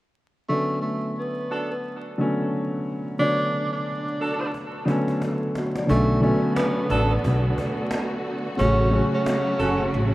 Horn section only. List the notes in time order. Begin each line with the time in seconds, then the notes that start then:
1.50 D4 F#4 A4
4.20 D4 F#4 A4
6.90 D4 F#4 A4
9.59 C#4 F#4 A4